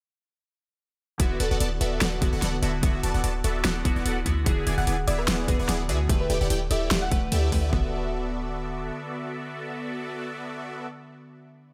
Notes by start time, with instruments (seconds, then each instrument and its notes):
1.18 808-style bass D1, synth keys D3 B3 E4 F#4, supersaw synth B3 F#4 A4 D5 E5, kick, closed hi-hat
1.40 808-style bass D1, supersaw synth B3 F#4 A4 D5 A5, closed hi-hat
1.51 808-style bass D1, supersaw synth B3 F#4 A4 D5 F#5
1.60 808-style bass D1, supersaw synth B3 F#4 A4 D5 A5, closed hi-hat
1.81 808-style bass D1, supersaw synth B3 F#4 A4 D5 E5, closed hi-hat
2.01 808-style bass D1, supersaw synth B3 F#4 A4 D5 F#5, snare, closed hi-hat
2.21 808-style bass D1, synth keys D3 B3 E4 F#4, supersaw synth B3 F#4 A4 D5 E5, kick, closed hi-hat
2.33 808-style bass D1, supersaw synth B3 F#4 A4 D5 F#5
2.42 808-style bass D1, supersaw synth B3 F#4 A4 D5 F#5, snare, closed hi-hat
2.62 808-style bass D1, synth keys D3 B3 E4 F#4, supersaw synth B3 F#4 A4 D5 E5, closed hi-hat
2.81 808-style bass D1, synth keys D3 B3 E4, supersaw synth B3 F#4 A4 D5 E5, kick, closed hi-hat
2.85 synth keys F#4
3.03 808-style bass D1, supersaw synth B3 F#4 A4 D5 A5, closed hi-hat
3.14 808-style bass D1, supersaw synth B3 F#4 A4 D5 F#5
3.24 808-style bass D1, supersaw synth B3 F#4 A4 D5 A5, closed hi-hat
3.44 808-style bass D1, supersaw synth B3 F#4 A4 D5 E5, closed hi-hat
3.65 808-style bass D1, supersaw synth B3 F#4 A4 D5 F#5, snare, closed hi-hat
3.84 808-style bass D1, synth keys D3 B3 E4 F#4, supersaw synth B3 F#4 A4 D5 E5, kick, closed hi-hat
3.96 808-style bass D1, supersaw synth B3 F#4 A4 D5 F#5
4.05 808-style bass D1, supersaw synth B3 F#4 A4 D5 F#5, closed hi-hat
4.25 808-style bass D2, synth keys D3 B3 E4 F#4, supersaw synth B3 F#4 A4 D5 E5, kick, closed hi-hat
4.44 808-style bass D1, synth keys D3 B3 F#4, supersaw synth B3 E4 G#4 D5 E5, kick, closed hi-hat
4.48 synth keys G#4
4.67 808-style bass D1, supersaw synth B3 E4 G#4 D5 G#5, closed hi-hat
4.78 808-style bass D1, supersaw synth B3 E4 G#4 D5 F#5, synth pluck F#5
4.87 808-style bass D1, supersaw synth B3 E4 G#4 D5 G#5, closed hi-hat
5.08 808-style bass D1, supersaw synth B3 E4 G#4 D5 E5, synth pluck D5, closed hi-hat
5.19 synth pluck B4
5.28 808-style bass D1, supersaw synth B3 E4 G#4 D5 F#5, snare, closed hi-hat
5.47 808-style bass D1, synth keys D3 B3 F#4 G#4, supersaw synth B3 G#4 D5, synth pluck B4, kick, closed hi-hat
5.59 808-style bass D1, supersaw synth B3 E4 G#4 D5 F#5, synth pluck B4
5.69 808-style bass D1, supersaw synth B3 E4 G#4 D5 F#5, snare, closed hi-hat
5.88 808-style bass D2, synth keys D3 B3 F#4 G#4, supersaw synth B3 E4 G#4 D5 E5, closed hi-hat
6.08 808-style bass D1, synth keys D3 A3 G4, supersaw synth A3 E4 G4 D5 E5, kick, closed hi-hat
6.12 synth keys B4
6.21 synth pluck B4
6.30 808-style bass D1, supersaw synth A3 E4 G4 D5 G5, closed hi-hat
6.41 808-style bass D1, supersaw synth A3 E4 G4 D5 F#5
6.50 808-style bass D1, supersaw synth A3 E4 G4 D5 G5, closed hi-hat
6.71 808-style bass D1, supersaw synth A3 E4 G4 D5 E5, synth pluck E5, closed hi-hat
6.91 808-style bass D1, supersaw synth A3 E4 G4 D5 F#5, snare, closed hi-hat
7.02 synth pluck F#5
7.11 808-style bass D1, synth keys D3 A3 G4 B4, supersaw synth A3 E4 G4 D5 F#5, kick, closed hi-hat
7.32 808-style bass D2, supersaw synth A3 E4 G4 D5 E5, closed hi-hat
7.51 808-style bass D2, synth keys D3 A3 G4 B4, supersaw synth A3 E4 G4 D5 E5, kick, open hi-hat
7.70 808-style bass D1, synth keys D3 B3, supersaw synth B3 F#4 A4 D5 E5, kick, floor tom
7.74 synth keys F#4 E5